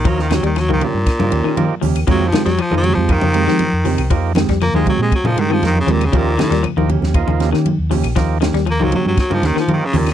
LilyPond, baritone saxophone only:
\new Staff \with { instrumentName = "Baritone saxophone" } { \clef bass \time 4/4 \key ees \mixolydian \tempo 4 = 118 ges16 ees16 ges16 ees16 ges16 ees16 bes,2 r8 | \tuplet 3/2 { ges8 f8 ges8 f8 ges8 f8 } ees2 | r4 bes16 aes16 ges16 aes16 ges16 f16 ees16 f16 ees16 des16 bes,16 des16 | bes,8 bes,8 r2. |
r4 bes16 ges16 ges16 ges16 ges16 f16 ees16 f16 ees16 des16 bes,16 r16 | }